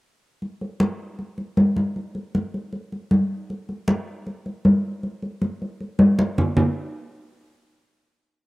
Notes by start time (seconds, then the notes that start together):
0.42 high conga
0.61 high conga
0.80 high conga
1.19 high conga
1.38 high conga
1.57 high conga
1.76 high conga
1.96 high conga
2.15 high conga
2.35 high conga
2.54 high conga
2.73 high conga
2.92 high conga
3.11 high conga
3.50 high conga
3.69 high conga
3.88 high conga
4.27 high conga
4.46 high conga
4.65 high conga
5.03 high conga
5.22 high conga
5.42 high conga
5.62 high conga
5.81 high conga
5.99 high conga
6.19 high conga
6.38 low conga
6.57 low conga